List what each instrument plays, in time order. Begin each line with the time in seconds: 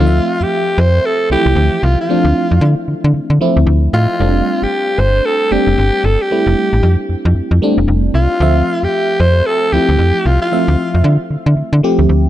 Already playing: alto saxophone F4
0.00 fm bass D2, fm electric piano F3 A3 C4 D#4
0.07 fm electric piano E5
0.41 fm bass F2, alto saxophone G4
0.78 fm bass F2, alto saxophone C5
1.05 alto saxophone A4
1.30 fm bass C2, fm electric piano E3 A3 C4 E4, alto saxophone G4
1.37 fm electric piano F3
1.46 fm bass C2
1.56 fm bass D2
1.83 fm bass C2, alto saxophone F4
2.01 alto saxophone F4
2.09 fm electric piano F3 A3 C4 D4
2.25 fm bass D2
2.51 fm bass F2
2.61 fm bass D3
2.88 fm bass D3
3.04 fm bass D3
3.14 fm bass D3
3.30 fm bass D3
3.41 fm electric piano F3 A3 C4 E4
3.57 fm bass D2
3.67 fm bass D2
3.93 fm bass A2, alto saxophone F4
4.19 fm bass F1, fm electric piano G3 A3 C4 D4
4.62 fm bass G1, alto saxophone G4
4.98 fm bass G1, alto saxophone C5
5.25 alto saxophone A4
5.51 fm bass F1, fm electric piano G3 A3 C4 D4, alto saxophone G4
5.67 fm bass F1
5.78 fm bass G1
6.04 fm bass G1, alto saxophone A4
6.22 alto saxophone G4
6.31 fm electric piano G3 A3 C4 E4
6.47 fm bass F1
6.73 fm bass A1
6.83 fm bass F2
7.09 fm bass F2
7.25 fm bass F2
7.35 fm bass F2
7.51 fm bass F2
7.62 fm electric piano G3 A3 C4 D4
7.78 fm bass F1
7.88 fm bass F1
8.14 fm bass C2, alto saxophone F4
8.40 fm bass D2, fm electric piano F3 A3 C4 E5
8.83 fm bass F2, alto saxophone G4
9.20 fm bass F2, alto saxophone C5
9.46 alto saxophone A4
9.73 fm bass D2, fm electric piano F3 A3 C4 E4, alto saxophone G4
9.89 fm bass D2
9.99 fm bass F2
10.26 fm bass C2, alto saxophone F4
10.42 alto saxophone F4
10.52 fm electric piano F3 A3 C4 E5
10.68 fm bass D2
10.94 fm bass F2
11.04 fm bass D3
11.31 fm bass D3
11.46 fm bass D3
11.57 fm bass D3
11.73 fm bass D3
11.83 fm electric piano F3 A3 C4 G4
11.99 fm bass D2
12.09 fm bass D2